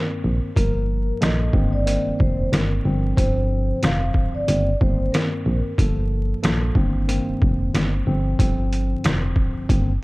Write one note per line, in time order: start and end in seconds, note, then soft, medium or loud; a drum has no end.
0.00 0.50 G2 medium
0.00 0.50 D#3 medium
0.00 0.50 A#3 medium
0.00 0.50 C4 loud
0.00 0.20 A#4 medium
0.24 0.40 A#1 medium
0.56 1.12 G1 loud
0.56 1.17 G2 medium
0.56 1.17 F3 medium
0.56 1.17 A#3 medium
0.56 1.17 A#4 loud
0.56 kick loud
0.56 closed hi-hat medium
1.20 1.49 A#1 loud
1.20 1.52 G2 loud
1.20 1.54 F3 medium
1.20 1.52 A#3 medium
1.20 1.54 A4 loud
1.20 1.70 D#5 medium
1.20 snare loud
1.20 closed hi-hat medium
1.53 1.97 G1 loud
1.53 1.84 G2 medium
1.53 1.84 D#3 medium
1.53 1.84 A#3 medium
1.53 1.84 C4 loud
1.53 kick loud
1.73 2.17 D5 medium
1.86 2.84 G2 medium
1.86 2.84 D#3 medium
1.86 2.84 A#3 medium
1.86 2.84 C4 medium
1.86 closed hi-hat medium
2.07 2.12 F1 soft
2.19 2.48 F1 medium
2.19 2.49 C5 medium
2.19 kick loud
2.53 2.80 G1 loud
2.53 snare loud
2.53 closed hi-hat medium
2.85 3.13 G1 loud
2.85 3.15 G2 medium
2.85 3.15 D3 medium
2.85 3.16 F3 medium
2.85 3.16 C4 loud
3.17 3.73 G1 loud
3.17 4.46 G2 loud
3.17 4.48 D3 medium
3.17 4.48 F3 medium
3.17 4.46 C4 loud
3.17 3.78 C5 loud
3.17 kick loud
3.17 closed hi-hat medium
3.83 4.10 F1 loud
3.83 4.31 F5 medium
3.83 snare loud
3.83 closed hi-hat medium
4.14 kick loud
4.35 4.78 D5 medium
4.47 4.76 G1 loud
4.47 4.69 G2 medium
4.47 4.70 D#3 medium
4.47 4.70 A#3 medium
4.47 4.70 C4 medium
4.47 closed hi-hat medium
4.81 5.08 G1 loud
4.81 5.72 G2 medium
4.81 5.72 D#3 medium
4.81 5.72 A#3 medium
4.81 5.72 C4 loud
4.81 5.10 C5 medium
4.81 kick loud
5.12 5.42 A#4 medium
5.12 snare loud
5.12 closed hi-hat medium
5.46 5.62 A#1 medium
5.78 6.33 G1 loud
5.78 6.39 G2 medium
5.78 6.39 F3 medium
5.78 6.39 A#3 medium
5.78 6.39 A4 loud
5.78 kick loud
5.78 closed hi-hat medium
6.42 6.71 A#1 medium
6.42 6.74 G2 loud
6.42 6.76 F3 medium
6.42 6.74 A#3 medium
6.42 6.76 A4 loud
6.42 snare loud
6.42 closed hi-hat medium
6.75 7.19 G1 loud
6.75 7.06 G2 loud
6.75 7.06 D#3 medium
6.75 7.06 A#3 medium
6.75 7.06 C4 loud
6.75 kick loud
7.08 8.06 G2 medium
7.08 8.06 D#3 medium
7.08 8.06 A#3 medium
7.08 8.06 C4 loud
7.08 closed hi-hat medium
7.28 7.34 F1 soft
7.42 7.69 F1 medium
7.42 kick loud
7.74 8.02 G1 loud
7.74 snare loud
7.74 closed hi-hat medium
8.07 8.34 G1 loud
8.07 8.37 G2 medium
8.07 8.37 D3 medium
8.07 8.37 F3 medium
8.07 8.37 C4 loud
8.39 8.94 G1 loud
8.39 9.67 G2 loud
8.39 9.70 D3 medium
8.39 9.70 F3 medium
8.39 9.68 C4 loud
8.39 kick loud
8.39 closed hi-hat medium
8.73 closed hi-hat medium
9.04 9.32 F1 loud
9.04 snare loud
9.04 closed hi-hat medium
9.36 kick loud
9.69 9.97 G1 loud
9.69 9.91 G2 medium
9.69 9.91 D#3 medium
9.69 9.91 A#3 medium
9.69 9.91 C4 medium
9.69 kick loud
9.69 closed hi-hat medium